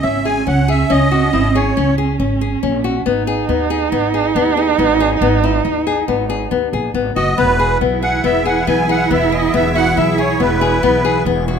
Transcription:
Already playing: cello C#4
0.03 upright bass G#1, nylon-string guitar C#4, accordion E5
0.25 nylon-string guitar G#4, accordion G#5
0.47 upright bass C#2, nylon-string guitar C#4, accordion F#5
0.68 nylon-string guitar G#4, accordion E5
0.90 upright bass C#2, nylon-string guitar C#4, accordion D#5
1.11 nylon-string guitar F#4
1.33 upright bass G#1, nylon-string guitar E4
1.55 nylon-string guitar G#4, accordion C#5
1.77 upright bass C#2, nylon-string guitar C#4
1.98 nylon-string guitar G#4
2.19 upright bass G#1, nylon-string guitar C#4
2.41 nylon-string guitar G#4
2.63 upright bass A#1, nylon-string guitar C#4
2.84 nylon-string guitar F#4
3.06 upright bass G#1, nylon-string guitar B3, cello D#4
3.27 nylon-string guitar G#4
3.49 upright bass D#2, nylon-string guitar B3
3.70 nylon-string guitar G#4
3.92 upright bass G#1, nylon-string guitar B3
4.14 nylon-string guitar G#4
4.35 upright bass D#2, nylon-string guitar B3
4.57 nylon-string guitar G#4
4.78 upright bass G#1, nylon-string guitar B3
5.00 nylon-string guitar G#4
5.21 upright bass G#1, nylon-string guitar B3
5.44 nylon-string guitar E4
5.65 upright bass D#2, nylon-string guitar D#4
5.87 nylon-string guitar G#4
6.08 upright bass G#1, nylon-string guitar B3
6.30 nylon-string guitar G#4
6.51 upright bass D#2, nylon-string guitar B3
6.73 upright bass A#1, nylon-string guitar G#4
6.94 upright bass G#1, nylon-string guitar B3
7.16 upright bass F#1, nylon-string guitar F#4, accordion D#5
7.37 upright bass E1, ambient pad E3 B3 G#4, nylon-string guitar B3, cello E4, accordion B4
7.59 nylon-string guitar G#4
7.81 upright bass B1, nylon-string guitar B3
8.03 nylon-string guitar G#4, accordion F#5
8.24 upright bass E1, nylon-string guitar B3, accordion E5
8.46 nylon-string guitar G#4, accordion F#5
8.67 upright bass B1, nylon-string guitar B3, accordion G#5
8.89 nylon-string guitar G#4, accordion F#5
9.11 upright bass E1, nylon-string guitar B3, accordion E5
9.32 nylon-string guitar G#4, accordion D#5
9.54 upright bass E1, nylon-string guitar B3, accordion E5
9.76 nylon-string guitar F#4, accordion F#5
9.97 upright bass B1, nylon-string guitar E4, accordion E5
10.18 nylon-string guitar G#4, accordion C#5
10.40 upright bass E1, nylon-string guitar B3, accordion B4
10.61 nylon-string guitar G#4
10.83 upright bass B1, nylon-string guitar B3
11.05 nylon-string guitar G#4
11.25 upright bass E1, nylon-string guitar B3
11.48 nylon-string guitar F#4

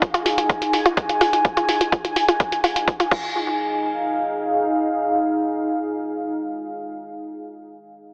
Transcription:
Already playing: ambient pad D#4 G#4 G#5
0.02 synth arpeggio sound F4, kick, closed hi-hat
0.14 synth arpeggio sound F4, closed hi-hat
0.26 synth arpeggio sound F4, open hi-hat
0.38 synth arpeggio sound F4, closed hi-hat
0.50 synth arpeggio sound F4, kick, closed hi-hat
0.62 synth arpeggio sound F4, closed hi-hat
0.73 synth arpeggio sound F4, open hi-hat
0.86 synth arpeggio sound F4, closed hi-hat
0.97 synth arpeggio sound F4, kick, closed hi-hat
1.09 synth arpeggio sound F4, closed hi-hat
1.21 synth arpeggio sound F4, open hi-hat
1.33 synth arpeggio sound F4, closed hi-hat
1.45 synth arpeggio sound F4, kick, closed hi-hat
1.57 synth arpeggio sound F4, closed hi-hat
1.69 synth arpeggio sound F4, open hi-hat
1.81 synth arpeggio sound F4, closed hi-hat
1.92 synth arpeggio sound F4, kick, closed hi-hat
2.05 synth arpeggio sound F4, closed hi-hat
2.16 synth arpeggio sound F4, open hi-hat
2.28 synth arpeggio sound F4, closed hi-hat
2.40 synth arpeggio sound F4, kick, closed hi-hat
2.52 synth arpeggio sound F4, closed hi-hat
2.64 synth arpeggio sound F4, open hi-hat
2.76 synth arpeggio sound F4, closed hi-hat
2.88 synth arpeggio sound F4, kick, closed hi-hat
3.00 synth arpeggio sound F4, closed hi-hat
3.11 ambient pad D#4 G#4 F5, synth arpeggio sound F4, kick, crash

